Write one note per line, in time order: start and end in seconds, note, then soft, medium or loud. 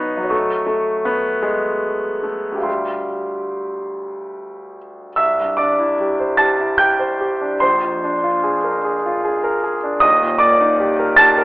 0.00 0.23 B1 soft
0.00 0.31 B3 medium
0.00 0.34 D#4 medium
0.00 0.19 F#4 soft
0.00 0.22 C#5 soft
0.00 0.25 D#5 soft
0.00 0.28 C#6 soft
0.17 2.55 F#2 soft
0.17 2.56 F#4 soft
0.23 2.58 C#5 soft
0.23 2.59 D#5 soft
0.30 0.65 A3 medium
0.30 2.61 C#6 soft
0.67 1.04 A3 medium
1.05 1.44 B3 medium
1.42 2.24 G#3 medium
2.23 2.66 A3 medium
2.52 5.07 D2 soft
2.52 5.08 G4 soft
2.58 5.10 E5 soft
2.58 5.11 F5 soft
2.63 4.75 G3 medium
2.63 5.13 C6 soft
5.16 7.57 C2 soft
5.16 5.56 E5 medium
5.16 5.58 E6 medium
5.40 5.72 G2 soft
5.57 5.92 D4 soft
5.57 6.36 D5 medium
5.57 6.39 D6 medium
5.79 6.12 E4 soft
6.01 6.33 G4 soft
6.20 6.52 C5 soft
6.37 6.72 G4 soft
6.37 6.77 A5 medium
6.37 6.79 A6 medium
6.60 6.93 E4 soft
6.78 7.13 G4 soft
6.78 7.57 G5 medium
6.78 7.60 G6 medium
6.99 7.32 C5 soft
7.21 7.53 G4 soft
7.41 7.62 D4 soft
7.60 9.99 A#1 medium
7.60 9.59 C5 medium
7.60 9.62 C6 medium
7.83 8.15 F2 soft
8.04 8.36 D4 soft
8.24 8.56 F4 soft
8.44 8.76 G#4 soft
8.64 8.96 A#4 soft
8.84 9.16 G#4 soft
9.06 9.37 F4 soft
9.24 9.56 G#4 soft
9.44 9.75 A#4 soft
9.64 9.95 G#4 medium
9.84 10.03 D4 soft
10.00 11.44 D#1 medium
10.00 11.44 D#2 medium
10.00 10.38 D#5 medium
10.00 10.41 D#6 medium
10.23 10.54 A#2 soft
10.38 10.72 A#3 soft
10.38 11.14 D5 medium
10.38 11.17 D6 medium
10.61 10.92 D#4 medium
10.80 11.11 G4 medium
10.99 11.30 A#4 medium
11.16 11.44 G4 medium
11.16 11.44 A5 medium
11.16 11.44 A6 loud
11.38 11.44 A#4 medium